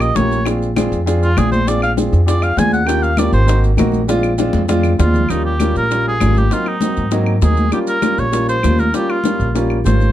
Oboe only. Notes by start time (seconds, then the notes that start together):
0.01 D#5
0.16 C#5
1.23 F4
1.38 G#4
1.52 C5
1.68 D5
1.83 F5
2.28 D5
2.43 F5
2.58 G#5
2.73 F#5
2.87 G5
3.02 F5
3.18 D5
3.33 C5
5.00 F4
5.30 D#4
5.45 G4
5.77 A#4
6.08 G#4
6.37 G4
6.53 F4
6.68 D#4
7.43 G#4
7.73 G4
7.88 A#4
8.19 C#5
8.49 C5
8.79 A#4
8.95 G4
9.10 F4
9.85 C5